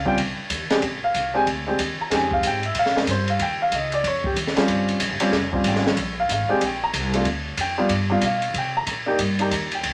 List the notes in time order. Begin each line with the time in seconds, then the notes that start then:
Already playing: C#2
0.06 G3 C4 C#4 F4 G5, kick
0.18 C2, kick, ride
0.38 muted upright bass stroke
0.50 D#2, kick, hi-hat pedal, ride
0.70 G#3 C4 D4 G4, muted upright bass stroke, snare, ride
0.82 A#1, kick, ride
1.04 F5
1.14 C2, kick, hi-hat pedal, ride
1.34 G#3 C4 D4 G4 G#5
1.46 D2, kick, ride
1.67 G#3 C4 D4 G4
1.79 D#2, kick, hi-hat pedal, ride
1.99 A#5, muted upright bass stroke
2.10 F2 G#3 C4 D#4 G4, kick, snare, ride
2.15 G#5
2.31 F5, kick
2.43 G#2, kick, hi-hat pedal, ride
2.47 G5
2.63 E5, ride
2.75 A#2, kick, ride
2.79 F5
2.86 snare
2.95 G#3 C4 D4 G#4 A#4, snare
3.07 G2 C5, kick, hi-hat pedal, ride
3.28 F5, ride
3.39 D#2 G5, kick, ride
3.62 F5
3.72 C#2 D#5, kick, hi-hat pedal, ride
3.92 D5, ride
4.04 F2 C#5, kick, ride
4.24 G4, kick
4.36 D#2, kick, hi-hat pedal, ride
4.47 snare
4.56 G3 C4 C#4 F4, snare, ride
4.68 G1, kick, ride
4.88 ride
5.00 A#1, kick, hi-hat pedal, ride
5.11 G1
5.20 D#1 G3 C4 C#4 F4, ride
5.32 F1, kick, snare
5.53 G3 C4 C#4 F4, kick
5.64 G#1 G5, kick, hi-hat pedal, ride
5.76 snare
5.87 snare
5.97 A#1, kick, ride
6.20 F5
6.29 G#1 F5, kick, hi-hat pedal, ride
6.49 G#3 C4 D4 G4, muted upright bass stroke
6.61 A#1, kick, ride
6.65 G5
6.84 A#5
6.94 C2, kick, hi-hat pedal, ride
7.14 A3 C4 D4 F4, ride
7.25 D2, kick, ride
7.57 F2 G5, kick, hi-hat pedal, ride
7.78 G3 B3 D4 F4
7.89 G2, kick, ride
8.10 G3 B3 D4 F4 F5
8.21 B2 F5, kick, hi-hat pedal, ride
8.42 ride
8.54 C3, kick, ride
8.58 G5
8.77 A#5
8.87 A#2, kick, hi-hat pedal, ride
9.06 A#3 D4 D#4 G4
9.19 G2, kick, ride
9.39 A#3 D4 D#4 G4 A#5, ride
9.51 D#2, kick, hi-hat pedal, ride
9.72 G5, ride
9.83 C2, kick, ride